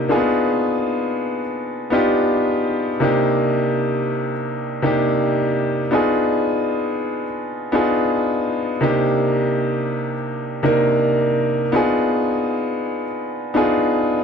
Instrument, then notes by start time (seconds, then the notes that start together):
grand piano
Already playing: C3 A#3 D4 D#4 G4
0.08 A#3 D4 D#4 F4 G#4
0.15 B3
1.90 B3 D4 D#4 F4 G4
3.00 C3 A#3 D4 D#4
3.04 G4
4.82 C3 A#3 D4 D#4 G4
5.91 B3 D4 D#4 F4 G#4
7.72 B3 D4 D#4 F4 G#4
8.81 C3 A#3 D4 D#4 G4
10.63 C3 A#3 D4 D#4 A#4
11.72 B3 D4 D#4 F4 G#4
13.54 B3 D4 D#4 F4 G#4